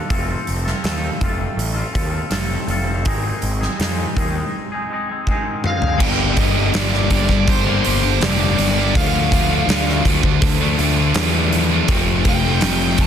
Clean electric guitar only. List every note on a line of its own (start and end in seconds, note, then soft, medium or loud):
0.09 0.66 F3 medium
0.09 0.66 A3 medium
0.09 0.31 C4 medium
0.09 0.28 F4 medium
0.09 0.27 A4 medium
0.28 0.68 C4 medium
0.28 0.66 F4 medium
0.28 0.64 A4 medium
0.65 0.84 C4 soft
0.65 0.84 F4 medium
0.65 0.85 A4 medium
0.83 1.58 F3 medium
0.83 1.20 A3 medium
0.83 1.22 C4 medium
0.83 1.22 F4 medium
0.83 1.24 A4 medium
1.22 1.77 A3 medium
1.22 1.40 C4 medium
1.22 1.39 F4 medium
1.22 1.37 A4 medium
1.38 1.76 C4 medium
1.38 1.75 F4 soft
1.38 1.72 A4 medium
1.74 1.92 C4 medium
1.74 1.93 F4 medium
1.74 1.95 A4 medium
1.92 2.29 A3 medium
1.92 2.12 C4 medium
1.92 2.10 F4 medium
1.92 2.09 A4 medium
2.10 2.30 C4 soft
2.10 2.30 F4 medium
2.10 2.31 A4 medium
2.29 3.02 F3 medium
2.29 2.66 A3 medium
2.29 2.68 C4 medium
2.29 2.68 F4 medium
2.29 2.69 A4 medium
2.67 3.03 A3 medium
2.67 2.88 C4 medium
2.67 2.86 F4 medium
2.67 2.85 A4 medium
2.86 3.05 C4 medium
2.86 3.04 F4 medium
2.86 3.03 A4 medium
3.04 3.61 G#2 medium
3.04 3.61 D#3 medium
3.04 3.25 G#3 medium
3.04 3.24 C4 medium
3.04 3.24 D#4 medium
3.04 3.22 G#4 medium
3.24 3.62 G#3 soft
3.24 3.61 C4 medium
3.24 3.60 D#4 medium
3.24 3.59 G#4 medium
3.61 3.79 G#3 soft
3.61 3.80 C4 medium
3.61 3.80 D#4 medium
3.61 3.80 G#4 medium
3.79 4.53 G#2 medium
3.79 4.53 D#3 medium
3.79 4.16 G#3 medium
3.79 4.16 C4 medium
3.79 4.18 D#4 medium
3.79 4.19 G#4 medium
4.17 4.38 G#3 medium
4.17 4.36 C4 medium
4.17 4.36 D#4 medium
4.17 4.34 G#4 medium
4.36 4.74 G#3 medium
4.36 4.73 C4 soft
4.36 4.72 D#4 medium
4.36 4.71 G#4 medium
4.72 4.89 G#3 soft
4.72 4.91 C4 medium
4.72 4.92 D#4 medium
4.72 4.93 G#4 medium
4.90 5.12 G#3 medium
4.90 5.10 C4 medium
4.90 5.10 D#4 medium
4.90 5.08 G#4 medium
5.09 5.28 G#3 soft
5.09 5.29 C4 medium
5.09 5.29 D#4 soft
5.09 5.30 G#4 medium
5.28 5.99 G#2 medium
5.28 6.00 D#3 medium
5.28 5.65 G#3 medium
5.28 5.66 C4 medium
5.28 5.67 D#4 medium
5.28 5.69 G#4 medium
5.66 5.87 G#3 medium
5.66 5.86 C4 medium
5.66 5.85 D#4 medium
5.66 5.84 G#4 medium
5.85 6.02 G#3 soft
5.85 6.01 C4 medium
5.85 6.01 D#4 medium
5.85 6.00 G#4 medium